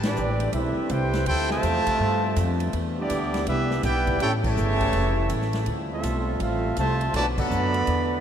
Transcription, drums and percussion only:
0.03 snare medium
0.03 ride medium
0.16 hi-hat pedal medium
0.40 ride medium
0.53 kick soft
0.53 ride medium
0.89 kick soft
0.89 hi-hat pedal medium
0.89 ride medium
1.13 snare medium
1.13 ride medium
1.26 kick soft
1.26 ride medium
1.50 snare medium
1.63 kick soft
1.63 hi-hat pedal medium
1.63 ride medium
1.87 kick medium
1.87 ride medium
2.00 kick soft
2.36 kick soft
2.36 hi-hat pedal medium
2.36 ride medium
2.60 ride medium
2.73 kick soft
2.73 ride medium
3.10 kick soft
3.10 hi-hat pedal medium
3.10 ride medium
3.34 snare medium
3.34 ride medium
3.47 kick soft
3.47 ride medium
3.71 snare soft
3.83 kick soft
3.83 snare soft
3.83 hi-hat pedal medium
3.83 ride medium
4.07 kick medium
4.07 ride medium
4.20 kick soft
4.20 ride medium
4.44 kick medium
4.44 crash medium
4.57 hi-hat pedal medium
4.81 kick medium
4.81 ride medium
4.93 kick soft
4.93 ride medium
5.30 kick soft
5.30 hi-hat pedal medium
5.30 ride medium
5.42 snare soft
5.53 snare medium
5.53 ride medium
5.66 kick soft
5.66 ride medium
6.03 kick soft
6.03 hi-hat pedal medium
6.03 ride medium
6.40 kick soft
6.40 ride medium
6.77 kick soft
6.77 hi-hat pedal medium
6.77 ride medium
7.01 ride medium
7.14 kick soft
7.14 snare soft
7.14 ride medium
7.38 kick medium
7.38 crash medium
7.51 hi-hat pedal medium
7.74 ride medium
7.87 kick soft
7.87 ride medium

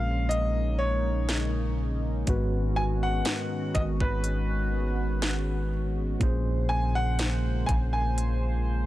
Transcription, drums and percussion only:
0.31 closed hi-hat medium
1.29 snare loud
1.29 closed hi-hat medium
2.27 kick loud
2.27 closed hi-hat medium
3.25 snare loud
3.25 closed hi-hat medium
3.75 kick loud
3.75 closed hi-hat medium
4.00 kick loud
4.24 closed hi-hat medium
5.22 snare loud
5.22 closed hi-hat medium
6.21 kick loud
6.21 closed hi-hat medium
7.19 snare loud
7.19 closed hi-hat medium
7.69 kick loud
7.69 closed hi-hat medium
8.18 closed hi-hat medium

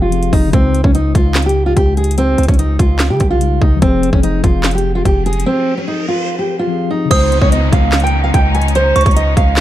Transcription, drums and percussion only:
0.12 closed hi-hat medium
0.23 closed hi-hat soft
0.33 kick loud
0.33 open hi-hat medium
0.53 kick loud
0.53 closed hi-hat medium
0.75 closed hi-hat medium
0.84 kick loud
0.95 closed hi-hat medium
1.15 kick medium
1.15 closed hi-hat medium
1.35 snare loud
1.35 clap loud
1.35 closed hi-hat medium
1.42 closed hi-hat medium
1.49 closed hi-hat medium
1.77 kick medium
1.77 closed hi-hat medium
1.97 closed hi-hat soft
2.04 closed hi-hat medium
2.11 closed hi-hat medium
2.18 closed hi-hat medium
2.38 closed hi-hat medium
2.43 closed hi-hat medium
2.48 kick loud
2.48 closed hi-hat medium
2.54 closed hi-hat soft
2.59 closed hi-hat medium
2.79 kick loud
2.79 closed hi-hat medium
2.99 snare loud
2.99 clap loud
2.99 closed hi-hat medium
3.20 kick medium
3.20 closed hi-hat medium
3.41 closed hi-hat medium
3.62 kick loud
3.82 kick loud
3.82 closed hi-hat medium
4.03 closed hi-hat medium
4.13 kick medium
4.23 closed hi-hat medium
4.44 kick loud
4.44 closed hi-hat medium
4.64 snare loud
4.64 clap loud
4.64 closed hi-hat medium
4.71 closed hi-hat medium
4.78 closed hi-hat medium
5.05 kick medium
5.05 closed hi-hat medium
5.26 closed hi-hat soft
5.33 closed hi-hat medium
5.40 closed hi-hat medium
7.11 kick loud
7.11 closed hi-hat medium
7.11 crash loud
7.32 closed hi-hat medium
7.42 kick loud
7.52 closed hi-hat medium
7.72 kick loud
7.72 closed hi-hat medium
7.92 snare loud
7.92 clap medium
7.92 closed hi-hat medium
8.00 closed hi-hat medium
8.07 closed hi-hat medium
8.34 kick medium
8.34 closed hi-hat medium
8.55 closed hi-hat medium
8.62 closed hi-hat medium
8.68 closed hi-hat medium
8.75 closed hi-hat medium
8.96 closed hi-hat medium
9.01 closed hi-hat medium
9.06 kick loud
9.06 closed hi-hat medium
9.11 closed hi-hat soft
9.17 closed hi-hat medium
9.37 kick loud
9.37 closed hi-hat medium
9.57 snare loud
9.57 clap loud
9.57 closed hi-hat medium

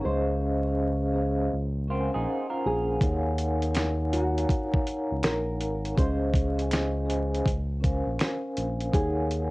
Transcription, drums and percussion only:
3.01 kick loud
3.01 closed hi-hat medium
3.38 closed hi-hat medium
3.62 closed hi-hat soft
3.75 finger snap medium
3.75 snare loud
3.75 closed hi-hat medium
4.13 closed hi-hat medium
4.38 closed hi-hat soft
4.49 kick medium
4.49 closed hi-hat medium
4.74 kick loud
4.87 closed hi-hat medium
5.23 finger snap medium
5.23 snare loud
5.23 closed hi-hat medium
5.61 closed hi-hat medium
5.85 closed hi-hat soft
5.98 kick loud
5.98 closed hi-hat medium
6.34 kick loud
6.34 closed hi-hat medium
6.59 closed hi-hat soft
6.71 finger snap medium
6.71 snare loud
6.71 closed hi-hat medium
7.10 closed hi-hat medium
7.34 closed hi-hat soft
7.46 kick medium
7.46 closed hi-hat medium
7.84 kick medium
7.84 closed hi-hat medium
8.19 finger snap medium
8.19 snare loud
8.19 closed hi-hat medium
8.57 closed hi-hat medium
8.80 closed hi-hat soft
8.93 kick loud
8.93 closed hi-hat medium
9.31 closed hi-hat medium

